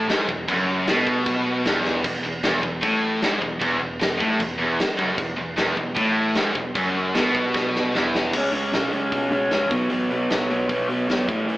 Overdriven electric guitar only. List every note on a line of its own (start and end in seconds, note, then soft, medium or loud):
0.09 0.28 G#2 loud
0.29 0.44 E2 medium
0.48 0.87 F#2 loud
0.87 1.65 B2 loud
1.65 2.04 E2 loud
2.05 2.20 E2 medium
2.25 2.40 E2 medium
2.44 2.62 E2 loud
2.63 2.79 E2 medium
2.83 3.21 A2 loud
3.22 3.41 G#2 loud
3.42 3.57 E2 medium
3.61 3.80 E2 loud
3.82 3.97 E2 medium
4.01 4.17 E2 medium
4.20 4.39 A2 loud
4.40 4.55 E2 medium
4.59 4.78 E2 loud
4.98 5.17 F#2 loud
5.18 5.34 E2 medium
5.38 5.54 E2 medium
5.58 5.76 E2 loud
5.77 5.93 E2 medium
5.97 6.36 A2 loud
6.36 6.55 G#2 loud
6.56 6.72 E2 medium
6.75 7.14 F#2 loud
7.14 7.93 B2 loud
7.94 8.33 E2 loud
8.34 8.50 C#3 medium
8.34 8.51 G#3 medium
8.34 8.52 C#4 medium
8.52 8.72 C#3 medium
8.52 8.72 G#3 medium
8.52 8.73 C#4 medium
8.73 8.91 C#3 medium
8.73 8.91 G#3 medium
8.73 8.92 C#4 medium
8.92 9.11 C#3 medium
8.92 9.11 G#3 medium
8.92 9.12 C#4 medium
9.12 9.29 C#3 medium
9.12 9.30 G#3 loud
9.12 9.31 C#4 medium
9.30 9.51 C#3 medium
9.30 9.51 G#3 medium
9.30 9.52 C#4 medium
9.52 9.70 C#3 medium
9.52 9.70 G#3 medium
9.52 9.71 C#4 medium
9.71 9.89 B2 medium
9.71 9.89 F#3 loud
9.71 9.90 B3 loud
9.90 10.09 B2 medium
9.90 10.10 F#3 medium
9.90 10.10 B3 loud
10.10 10.29 B2 medium
10.10 10.29 F#3 medium
10.10 10.30 B3 medium
10.30 10.49 B2 medium
10.30 10.49 F#3 medium
10.30 10.50 B3 medium
10.50 10.68 B2 medium
10.50 10.69 F#3 medium
10.50 10.69 B3 medium
10.70 10.88 B2 medium
10.70 10.88 F#3 loud
10.70 10.89 B3 medium
10.89 11.07 B2 medium
10.89 11.07 F#3 medium
10.89 11.08 B3 medium
11.08 11.27 B2 medium
11.08 11.27 F#3 medium
11.08 11.28 B3 medium
11.28 11.47 A2 loud
11.28 11.48 E3 loud
11.28 11.48 A3 loud
11.48 11.57 A2 medium
11.48 11.57 E3 loud
11.48 11.57 A3 medium